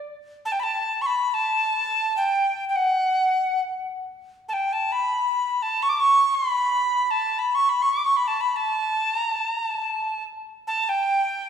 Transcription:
0.45 0.53 A5 medium
0.52 0.61 G5 medium
0.60 1.03 A5 medium
0.60 0.64 B5 medium
1.02 1.07 C#6 medium
1.06 1.35 B5 medium
1.34 2.16 A5 medium
2.17 2.65 G5 medium
2.69 2.77 G5 soft
2.76 3.61 F#5 medium
4.49 4.54 A5 medium
4.53 4.74 G5 medium
4.73 4.94 A5 medium
4.92 5.64 B5 medium
5.62 5.84 A5 medium
5.83 5.91 C#6 medium
5.89 5.96 D6 medium
5.96 6.36 C#6 medium
5.96 6.01 D6 medium
6.34 7.12 B5 medium
7.11 7.40 A5 medium
7.39 7.56 B5 medium
7.55 7.71 C#6 medium
7.69 7.84 B5 medium
7.82 7.95 C#6 medium
7.93 8.06 D6 medium
8.05 8.18 C#6 medium
8.17 8.29 B5 medium
8.28 8.42 A5 medium
8.41 8.58 B5 medium
8.56 9.16 A5 medium
9.16 9.32 A#5 medium
9.32 9.49 A5 medium
9.49 9.65 A#5 medium
9.65 10.24 A5 medium
10.67 10.90 A5 medium
10.89 11.49 G5 medium

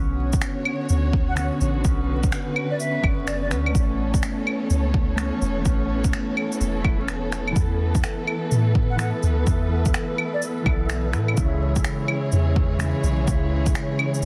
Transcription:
0.00 0.41 B1 medium
0.00 1.33 D3 medium
0.00 3.71 D3 medium
0.00 1.35 B3 medium
0.00 11.33 B3 medium
0.00 1.37 C#4 medium
0.00 7.52 C#4 medium
0.00 3.71 F#4 medium
0.00 1.83 C#5 medium
0.33 kick loud
0.33 shaker medium
0.41 finger snap loud
0.41 shaker medium
0.65 claves medium
0.89 1.50 D2 medium
0.89 shaker medium
1.13 kick loud
1.28 1.34 F#5 medium
1.35 1.79 D3 medium
1.35 1.83 B3 medium
1.35 1.84 C#4 loud
1.35 1.46 F#5 medium
1.35 finger snap loud
1.35 shaker medium
1.61 1.83 A1 loud
1.61 shaker soft
1.80 3.00 D3 medium
1.80 3.73 B4 medium
1.85 2.31 B1 loud
1.85 3.02 B3 medium
1.85 3.04 C#4 loud
1.85 kick loud
1.85 shaker medium
2.23 kick loud
2.23 shaker medium
2.32 finger snap loud
2.32 shaker medium
2.56 claves medium
2.70 2.78 D5 medium
2.79 3.05 E5 medium
2.79 shaker medium
3.02 3.53 F#1 medium
3.02 3.48 D3 medium
3.02 3.49 B3 medium
3.02 kick loud
3.02 claves medium
3.06 3.50 C#4 medium
3.26 3.37 D5 medium
3.26 finger snap loud
3.26 shaker medium
3.41 3.48 D5 medium
3.49 3.74 D2 medium
3.49 3.70 D3 medium
3.49 3.73 B3 medium
3.49 finger snap medium
3.49 shaker soft
3.53 3.74 C#4 medium
3.66 claves medium
3.71 5.14 A3 medium
3.75 4.22 A1 medium
3.75 11.33 E3 medium
3.75 5.16 B3 medium
3.75 5.18 C#4 medium
3.75 11.33 A4 medium
3.75 7.52 C#5 medium
3.75 kick loud
3.75 shaker medium
4.14 kick loud
4.14 shaker medium
4.23 finger snap loud
4.23 shaker medium
4.47 claves medium
4.70 5.31 C#2 medium
4.70 shaker medium
4.94 kick loud
5.16 5.60 A3 medium
5.16 5.63 B3 medium
5.16 5.64 C#4 loud
5.16 finger snap loud
5.16 shaker medium
5.42 5.64 E1 loud
5.42 shaker soft
5.61 6.80 A3 loud
5.61 6.82 B3 medium
5.65 6.12 A1 medium
5.65 6.82 C#4 loud
5.65 kick loud
5.65 shaker medium
6.04 kick loud
6.04 shaker medium
6.13 finger snap loud
6.13 shaker medium
6.37 claves medium
6.52 shaker soft
6.61 7.55 E1 medium
6.61 shaker medium
6.82 6.95 A3 medium
6.82 6.96 B3 medium
6.82 kick loud
6.82 claves medium
6.86 6.97 E4 medium
6.98 7.05 A3 medium
6.98 7.01 B3 medium
7.02 7.07 C#4 loud
7.08 finger snap loud
7.08 shaker medium
7.32 finger snap medium
7.32 shaker soft
7.48 claves medium
7.52 8.95 E3 medium
7.52 8.97 B3 medium
7.52 14.25 E4 medium
7.52 14.25 E5 medium
7.52 shaker medium
7.56 8.03 E2 medium
7.56 11.33 A3 medium
7.56 8.99 A4 medium
7.56 11.33 B4 medium
7.56 kick loud
7.95 kick loud
7.95 shaker medium
8.04 finger snap loud
8.04 shaker medium
8.27 claves medium
8.52 9.12 A2 medium
8.52 shaker medium
8.75 kick loud
8.90 8.95 F#5 medium
8.97 9.41 E3 medium
8.97 9.44 B3 medium
8.97 9.45 A4 loud
8.97 9.09 F#5 medium
8.97 finger snap loud
8.97 shaker medium
9.23 9.45 D2 loud
9.23 shaker soft
9.43 9.93 E2 loud
9.43 10.62 E3 medium
9.47 10.64 B3 medium
9.47 10.66 A4 loud
9.47 kick loud
9.47 shaker medium
9.86 kick loud
9.86 shaker medium
9.94 finger snap loud
9.94 shaker medium
10.18 claves medium
10.33 10.40 D5 medium
10.42 shaker medium
10.64 11.15 B1 medium
10.64 11.10 E3 medium
10.64 11.11 B3 medium
10.64 11.12 A4 medium
10.64 kick loud
10.64 claves medium
10.90 finger snap loud
10.90 shaker medium
11.11 11.36 A2 medium
11.11 11.34 E3 medium
11.11 11.35 B3 medium
11.11 11.36 A4 medium
11.11 finger snap medium
11.11 shaker soft
11.28 claves medium
11.33 12.76 C#3 medium
11.33 14.25 C#5 medium
11.33 shaker medium
11.37 11.84 C#2 medium
11.37 14.25 E3 medium
11.37 12.78 G#3 medium
11.37 14.25 G#3 medium
11.37 14.25 C#4 medium
11.37 14.25 G#4 medium
11.37 kick loud
11.41 12.80 E4 medium
11.76 kick loud
11.76 shaker medium
11.84 finger snap loud
11.84 shaker medium
12.08 claves medium
12.32 12.93 E2 medium
12.32 shaker medium
12.56 kick loud
12.78 13.22 C#3 medium
12.78 13.25 G#3 medium
12.78 finger snap loud
12.78 shaker medium
12.82 13.26 E4 loud
13.03 13.26 B1 loud
13.03 shaker soft
13.23 14.25 C#3 medium
13.23 14.25 G#3 medium
13.28 13.74 C#2 medium
13.28 14.25 E4 loud
13.28 kick loud
13.28 shaker medium
13.66 kick loud
13.66 shaker medium
13.75 finger snap loud
13.75 shaker medium
13.99 claves medium
14.14 shaker soft

